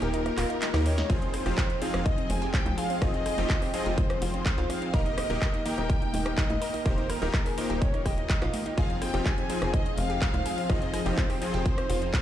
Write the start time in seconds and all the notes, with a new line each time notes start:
Already playing: D#3 A#3 D#4 F4 G4 A#4 G5
0.02 D#1 G4, closed hi-hat
0.14 D#4, closed hi-hat
0.26 D#4, cross-stick, closed hi-hat
0.38 D#1 F4, cross-stick, clap, open hi-hat
0.50 D#4, closed hi-hat
0.62 D#4, snare, clap, closed hi-hat
0.74 D#2 D#3 A#3 D#4 G4 A#4, cross-stick, snare, closed hi-hat, high conga
0.86 D#4 C#5, open hi-hat
0.98 D#4, snare, closed hi-hat
1.10 F1 F3 G#3 C4 D#4 F4 G#4 C5 G5, kick, closed hi-hat
1.22 C4, closed hi-hat
1.34 C4, cross-stick, open hi-hat
1.46 F1 F3 C4 D#4 F4 G4, cross-stick, closed hi-hat
1.58 G4, kick, clap, closed hi-hat
1.70 C4, closed hi-hat
1.82 F3 C4 D#4 F4 G#4 F5, open hi-hat
1.94 F1 C4, cross-stick, closed hi-hat
2.06 D#5, kick, closed hi-hat
2.18 C4, closed hi-hat
2.30 F1 C4 G#5, open hi-hat, low conga
2.42 G4, closed hi-hat
2.54 C4 G5, kick, cross-stick, clap, closed hi-hat
2.66 C2 C4, closed hi-hat, high conga, low conga
2.78 G#4 F5, open hi-hat
2.90 C4, open hi-hat
3.02 F1 F3 C4 D#4 F4 G#4 D#5, kick, cross-stick, closed hi-hat
3.14 C4, closed hi-hat
3.26 G#4, cross-stick, open hi-hat
3.38 F1 F3 C4 D#4 F4 G4, closed hi-hat
3.50 C4, kick, clap, closed hi-hat
3.62 G4, cross-stick, open hi-hat
3.74 F3 C4 D#4 F4 G#4 D#5, open hi-hat
3.86 F1 G4, closed hi-hat
3.98 C4 C5, kick, closed hi-hat
4.10 C4, cross-stick, closed hi-hat
4.22 F1 F4, open hi-hat
4.34 C4, closed hi-hat
4.46 C4, kick, clap, closed hi-hat
4.58 C2 F4, closed hi-hat, high conga
4.70 C4 F5, cross-stick, open hi-hat
4.82 C4, closed hi-hat
4.94 D#1 D#3 A#3 D#4 G4 A#4 D#5, kick, closed hi-hat
5.06 D#4, closed hi-hat
5.18 D#4, cross-stick, open hi-hat
5.30 D#1 D#3 A#3 D#4 G4 A#4, closed hi-hat
5.42 G4, kick, clap, closed hi-hat
5.54 D#4, closed hi-hat
5.66 D#3 A#3 D#4 G4 A#4 G5, open hi-hat
5.78 D#1 D#4, cross-stick, closed hi-hat
5.90 kick, closed hi-hat
6.02 D#4, closed hi-hat
6.14 D#1 D#4, open hi-hat, low conga
6.26 G4, cross-stick, closed hi-hat
6.38 D#4 D#5, kick, clap, closed hi-hat
6.50 A#1 D#4, closed hi-hat, high conga, low conga
6.62 A#4, open hi-hat
6.74 D#4, open hi-hat
6.86 D#1 D#3 A#3 D#4 F4 G4 A#4 C5, kick, cross-stick, closed hi-hat
6.98 D#4, closed hi-hat
7.10 A#4, cross-stick, open hi-hat
7.22 D#1 D#3 A#3 D#4 G4 A#4
7.34 D#4, kick, cross-stick, clap, closed hi-hat
7.46 G#4, open hi-hat
7.58 D#3 A#3 D#4 G4 A#4 C5, open hi-hat
7.70 D#1 G4, closed hi-hat
7.82 D#4 C#5, kick, closed hi-hat
7.94 D#4, cross-stick, closed hi-hat
8.06 D#1 G4 D#5, kick, cross-stick, open hi-hat
8.18 D#4, closed hi-hat
8.30 D#4, kick, clap, closed hi-hat
8.42 A#1 F4, cross-stick, closed hi-hat, high conga
8.54 D#4, open hi-hat, low conga
8.66 D#4, closed hi-hat
8.78 F1 F3 G#3 C4 D#4 F4 G#4 F5, kick, closed hi-hat
8.90 C4, closed hi-hat
9.02 C4 G5, cross-stick, open hi-hat
9.14 F1 F3 C4 D#4 F4 G4, cross-stick, closed hi-hat
9.25 G4 G#5, kick, clap, closed hi-hat
9.38 C4, closed hi-hat
9.50 F3 C4 D#4 F4 G#4, open hi-hat
9.62 F1 C4, cross-stick, closed hi-hat
9.73 D#5, kick, closed hi-hat
9.86 C4, closed hi-hat
9.97 F1 C4 F5, open hi-hat, low conga
10.10 G4, closed hi-hat
10.22 C4, kick, cross-stick, clap, closed hi-hat
10.34 C2 C4, closed hi-hat, high conga, low conga
10.46 G#4, open hi-hat
10.58 C4, open hi-hat
10.69 F1 F3 C4 D#4 F4 G#4 D#5, kick, cross-stick, closed hi-hat
10.82 C4, closed hi-hat
10.94 G#4, cross-stick, open hi-hat
11.06 F1 F3 C4 D#4 F4 G4, closed hi-hat
11.17 C4 C5, kick, clap, closed hi-hat
11.30 G4, cross-stick, open hi-hat
11.41 F3 C4 D#4 F4 G#4, open hi-hat
11.54 F1 G4, closed hi-hat
11.65 C4, kick, closed hi-hat
11.78 C4, cross-stick, closed hi-hat
11.90 F1 F4, open hi-hat
12.02 C4, closed hi-hat
12.14 C4, kick, clap, closed hi-hat